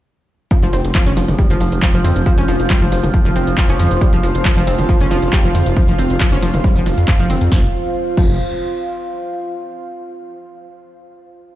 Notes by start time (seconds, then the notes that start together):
0.51 F3 F4, kick, closed hi-hat, shaker
0.56 C5
0.63 F1 F3, closed hi-hat
0.73 F1 C4, open hi-hat, shaker
0.84 F1, closed hi-hat, shaker
0.95 F3 F5, kick, clap, closed hi-hat, shaker
1.06 F1 C#4, closed hi-hat, mid tom
1.17 F1 F3, open hi-hat, shaker
1.28 F1, closed hi-hat, mid tom, shaker
1.39 G3, kick, closed hi-hat, shaker
1.50 F1 F3, closed hi-hat, mid tom
1.61 F1 F3, open hi-hat, shaker
1.72 F1, closed hi-hat, shaker
1.82 F3, kick, clap, closed hi-hat, shaker
1.94 F1 F3, closed hi-hat
2.04 F2 C4, open hi-hat, mid tom, shaker
2.16 F1, closed hi-hat, shaker
2.26 F3, kick, closed hi-hat, shaker
2.38 F1 C#4, closed hi-hat
2.48 F1 F3, open hi-hat, shaker
2.60 F1, closed hi-hat, shaker
2.70 G3, kick, clap, closed hi-hat, shaker
2.81 F1 F3, closed hi-hat, mid tom
2.92 F1 F3, open hi-hat, shaker
3.03 F1, closed hi-hat, mid tom, shaker
3.14 F3, kick, closed hi-hat, shaker
3.25 F1 F3, closed hi-hat, mid tom
3.36 F1 C4, open hi-hat, shaker
3.47 F1, closed hi-hat, shaker
3.58 F3, kick, clap, closed hi-hat, shaker
3.69 F1 C#4, closed hi-hat
3.79 F2 F3, open hi-hat, mid tom, shaker
3.91 F1, closed hi-hat, shaker
4.01 G3, kick, closed hi-hat, shaker
4.13 F1 F3, closed hi-hat
4.23 F1 F3, open hi-hat, shaker
4.35 F1, closed hi-hat, shaker
4.45 F3, kick, clap, closed hi-hat, shaker
4.57 F1 F3, closed hi-hat, mid tom
4.67 F1 C4, open hi-hat, shaker
4.79 F1, closed hi-hat, mid tom, shaker
4.89 F3, kick, closed hi-hat, shaker
5.00 F1 C#4, closed hi-hat, mid tom
5.11 F1 F3, open hi-hat, shaker
5.22 F1, closed hi-hat, shaker
5.33 G3, kick, clap, closed hi-hat, shaker
5.44 F1 F3, closed hi-hat
5.55 F2 F3, open hi-hat, mid tom, shaker
5.66 F1, closed hi-hat, shaker
5.77 F3, kick, closed hi-hat, shaker
5.88 F1 F3, closed hi-hat, mid tom
5.98 F1 C4, open hi-hat, shaker
6.10 F1, closed hi-hat, shaker
6.20 F3, kick, clap, closed hi-hat, shaker
6.32 F1 C#4, closed hi-hat, mid tom
6.42 F1 F3, open hi-hat, shaker
6.54 F1, closed hi-hat, mid tom, shaker
6.64 G3, kick, closed hi-hat, shaker
6.76 F1 F3, closed hi-hat, mid tom
6.86 F1 F3, open hi-hat, shaker
6.97 F2, closed hi-hat, shaker
7.08 F3, kick, clap, closed hi-hat, shaker
7.19 F1 F3, closed hi-hat
7.30 F1 C4, open hi-hat, mid tom, shaker
7.41 F2, closed hi-hat, shaker
7.52 F1 F3 F4, kick, snare
7.59 C5
7.65 F5
8.17 F1 F3, kick, crash